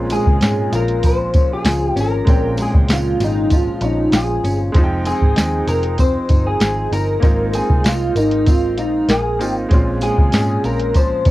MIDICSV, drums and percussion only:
0, 0, Header, 1, 2, 480
1, 0, Start_track
1, 0, Tempo, 619835
1, 1760, Time_signature, 4, 2, 24, 8
1, 8757, End_track
2, 0, Start_track
2, 0, Title_t, "Drums"
2, 76, Note_on_c, 9, 54, 49
2, 79, Note_on_c, 9, 42, 78
2, 153, Note_off_c, 9, 54, 0
2, 156, Note_off_c, 9, 42, 0
2, 204, Note_on_c, 9, 36, 77
2, 282, Note_off_c, 9, 36, 0
2, 318, Note_on_c, 9, 42, 81
2, 327, Note_on_c, 9, 54, 86
2, 330, Note_on_c, 9, 38, 108
2, 395, Note_off_c, 9, 42, 0
2, 405, Note_off_c, 9, 54, 0
2, 408, Note_off_c, 9, 38, 0
2, 562, Note_on_c, 9, 42, 79
2, 563, Note_on_c, 9, 54, 55
2, 639, Note_off_c, 9, 42, 0
2, 640, Note_off_c, 9, 54, 0
2, 682, Note_on_c, 9, 42, 49
2, 760, Note_off_c, 9, 42, 0
2, 797, Note_on_c, 9, 42, 82
2, 801, Note_on_c, 9, 36, 76
2, 801, Note_on_c, 9, 54, 47
2, 874, Note_off_c, 9, 42, 0
2, 878, Note_off_c, 9, 54, 0
2, 879, Note_off_c, 9, 36, 0
2, 1035, Note_on_c, 9, 42, 67
2, 1038, Note_on_c, 9, 54, 28
2, 1039, Note_on_c, 9, 36, 93
2, 1113, Note_off_c, 9, 42, 0
2, 1115, Note_off_c, 9, 54, 0
2, 1117, Note_off_c, 9, 36, 0
2, 1275, Note_on_c, 9, 42, 87
2, 1280, Note_on_c, 9, 54, 73
2, 1283, Note_on_c, 9, 38, 115
2, 1353, Note_off_c, 9, 42, 0
2, 1358, Note_off_c, 9, 54, 0
2, 1361, Note_off_c, 9, 38, 0
2, 1525, Note_on_c, 9, 42, 59
2, 1527, Note_on_c, 9, 54, 44
2, 1603, Note_off_c, 9, 42, 0
2, 1605, Note_off_c, 9, 54, 0
2, 1759, Note_on_c, 9, 42, 79
2, 1760, Note_on_c, 9, 36, 114
2, 1768, Note_on_c, 9, 54, 26
2, 1836, Note_off_c, 9, 42, 0
2, 1837, Note_off_c, 9, 36, 0
2, 1846, Note_off_c, 9, 54, 0
2, 1993, Note_on_c, 9, 54, 47
2, 1997, Note_on_c, 9, 42, 82
2, 2071, Note_off_c, 9, 54, 0
2, 2075, Note_off_c, 9, 42, 0
2, 2123, Note_on_c, 9, 36, 86
2, 2201, Note_off_c, 9, 36, 0
2, 2234, Note_on_c, 9, 42, 79
2, 2245, Note_on_c, 9, 54, 83
2, 2246, Note_on_c, 9, 38, 108
2, 2311, Note_off_c, 9, 42, 0
2, 2322, Note_off_c, 9, 54, 0
2, 2324, Note_off_c, 9, 38, 0
2, 2480, Note_on_c, 9, 54, 54
2, 2481, Note_on_c, 9, 42, 76
2, 2485, Note_on_c, 9, 38, 37
2, 2558, Note_off_c, 9, 54, 0
2, 2559, Note_off_c, 9, 42, 0
2, 2562, Note_off_c, 9, 38, 0
2, 2714, Note_on_c, 9, 42, 83
2, 2719, Note_on_c, 9, 36, 81
2, 2721, Note_on_c, 9, 54, 50
2, 2791, Note_off_c, 9, 42, 0
2, 2797, Note_off_c, 9, 36, 0
2, 2799, Note_off_c, 9, 54, 0
2, 2952, Note_on_c, 9, 42, 62
2, 2958, Note_on_c, 9, 54, 29
2, 3029, Note_off_c, 9, 42, 0
2, 3035, Note_off_c, 9, 54, 0
2, 3195, Note_on_c, 9, 42, 86
2, 3201, Note_on_c, 9, 54, 73
2, 3203, Note_on_c, 9, 38, 108
2, 3272, Note_off_c, 9, 42, 0
2, 3278, Note_off_c, 9, 54, 0
2, 3280, Note_off_c, 9, 38, 0
2, 3444, Note_on_c, 9, 42, 60
2, 3449, Note_on_c, 9, 54, 43
2, 3522, Note_off_c, 9, 42, 0
2, 3526, Note_off_c, 9, 54, 0
2, 3675, Note_on_c, 9, 42, 82
2, 3677, Note_on_c, 9, 36, 101
2, 3690, Note_on_c, 9, 54, 28
2, 3753, Note_off_c, 9, 42, 0
2, 3755, Note_off_c, 9, 36, 0
2, 3767, Note_off_c, 9, 54, 0
2, 3915, Note_on_c, 9, 42, 84
2, 3918, Note_on_c, 9, 54, 49
2, 3992, Note_off_c, 9, 42, 0
2, 3996, Note_off_c, 9, 54, 0
2, 4041, Note_on_c, 9, 36, 82
2, 4118, Note_off_c, 9, 36, 0
2, 4153, Note_on_c, 9, 42, 83
2, 4166, Note_on_c, 9, 38, 105
2, 4167, Note_on_c, 9, 54, 82
2, 4231, Note_off_c, 9, 42, 0
2, 4243, Note_off_c, 9, 38, 0
2, 4245, Note_off_c, 9, 54, 0
2, 4395, Note_on_c, 9, 42, 74
2, 4400, Note_on_c, 9, 54, 48
2, 4473, Note_off_c, 9, 42, 0
2, 4478, Note_off_c, 9, 54, 0
2, 4515, Note_on_c, 9, 42, 50
2, 4592, Note_off_c, 9, 42, 0
2, 4631, Note_on_c, 9, 42, 80
2, 4636, Note_on_c, 9, 36, 81
2, 4641, Note_on_c, 9, 54, 54
2, 4708, Note_off_c, 9, 42, 0
2, 4714, Note_off_c, 9, 36, 0
2, 4718, Note_off_c, 9, 54, 0
2, 4869, Note_on_c, 9, 42, 61
2, 4874, Note_on_c, 9, 54, 30
2, 4875, Note_on_c, 9, 36, 93
2, 4947, Note_off_c, 9, 42, 0
2, 4951, Note_off_c, 9, 54, 0
2, 4952, Note_off_c, 9, 36, 0
2, 5111, Note_on_c, 9, 42, 82
2, 5118, Note_on_c, 9, 54, 77
2, 5119, Note_on_c, 9, 38, 116
2, 5189, Note_off_c, 9, 42, 0
2, 5196, Note_off_c, 9, 54, 0
2, 5197, Note_off_c, 9, 38, 0
2, 5362, Note_on_c, 9, 42, 63
2, 5367, Note_on_c, 9, 54, 41
2, 5439, Note_off_c, 9, 42, 0
2, 5445, Note_off_c, 9, 54, 0
2, 5594, Note_on_c, 9, 42, 81
2, 5596, Note_on_c, 9, 36, 106
2, 5610, Note_on_c, 9, 54, 26
2, 5671, Note_off_c, 9, 42, 0
2, 5673, Note_off_c, 9, 36, 0
2, 5687, Note_off_c, 9, 54, 0
2, 5833, Note_on_c, 9, 54, 50
2, 5835, Note_on_c, 9, 42, 80
2, 5910, Note_off_c, 9, 54, 0
2, 5912, Note_off_c, 9, 42, 0
2, 5961, Note_on_c, 9, 36, 77
2, 6038, Note_off_c, 9, 36, 0
2, 6073, Note_on_c, 9, 42, 76
2, 6082, Note_on_c, 9, 54, 81
2, 6085, Note_on_c, 9, 38, 106
2, 6150, Note_off_c, 9, 42, 0
2, 6160, Note_off_c, 9, 54, 0
2, 6163, Note_off_c, 9, 38, 0
2, 6317, Note_on_c, 9, 42, 68
2, 6321, Note_on_c, 9, 54, 55
2, 6394, Note_off_c, 9, 42, 0
2, 6399, Note_off_c, 9, 54, 0
2, 6436, Note_on_c, 9, 42, 47
2, 6514, Note_off_c, 9, 42, 0
2, 6553, Note_on_c, 9, 42, 81
2, 6558, Note_on_c, 9, 36, 86
2, 6561, Note_on_c, 9, 54, 48
2, 6631, Note_off_c, 9, 42, 0
2, 6635, Note_off_c, 9, 36, 0
2, 6639, Note_off_c, 9, 54, 0
2, 6795, Note_on_c, 9, 42, 67
2, 6796, Note_on_c, 9, 54, 29
2, 6872, Note_off_c, 9, 42, 0
2, 6873, Note_off_c, 9, 54, 0
2, 7036, Note_on_c, 9, 42, 86
2, 7040, Note_on_c, 9, 54, 80
2, 7044, Note_on_c, 9, 38, 101
2, 7113, Note_off_c, 9, 42, 0
2, 7118, Note_off_c, 9, 54, 0
2, 7121, Note_off_c, 9, 38, 0
2, 7285, Note_on_c, 9, 42, 62
2, 7288, Note_on_c, 9, 54, 46
2, 7362, Note_off_c, 9, 42, 0
2, 7366, Note_off_c, 9, 54, 0
2, 7518, Note_on_c, 9, 42, 79
2, 7519, Note_on_c, 9, 36, 105
2, 7531, Note_on_c, 9, 54, 25
2, 7596, Note_off_c, 9, 42, 0
2, 7597, Note_off_c, 9, 36, 0
2, 7608, Note_off_c, 9, 54, 0
2, 7753, Note_on_c, 9, 54, 50
2, 7757, Note_on_c, 9, 42, 74
2, 7830, Note_off_c, 9, 54, 0
2, 7835, Note_off_c, 9, 42, 0
2, 7883, Note_on_c, 9, 36, 84
2, 7961, Note_off_c, 9, 36, 0
2, 7993, Note_on_c, 9, 42, 74
2, 8001, Note_on_c, 9, 54, 77
2, 8006, Note_on_c, 9, 38, 107
2, 8071, Note_off_c, 9, 42, 0
2, 8079, Note_off_c, 9, 54, 0
2, 8083, Note_off_c, 9, 38, 0
2, 8239, Note_on_c, 9, 42, 75
2, 8241, Note_on_c, 9, 54, 57
2, 8317, Note_off_c, 9, 42, 0
2, 8318, Note_off_c, 9, 54, 0
2, 8359, Note_on_c, 9, 42, 48
2, 8437, Note_off_c, 9, 42, 0
2, 8475, Note_on_c, 9, 42, 73
2, 8481, Note_on_c, 9, 36, 81
2, 8485, Note_on_c, 9, 54, 49
2, 8553, Note_off_c, 9, 42, 0
2, 8558, Note_off_c, 9, 36, 0
2, 8562, Note_off_c, 9, 54, 0
2, 8714, Note_on_c, 9, 42, 66
2, 8719, Note_on_c, 9, 36, 97
2, 8722, Note_on_c, 9, 54, 30
2, 8757, Note_off_c, 9, 36, 0
2, 8757, Note_off_c, 9, 42, 0
2, 8757, Note_off_c, 9, 54, 0
2, 8757, End_track
0, 0, End_of_file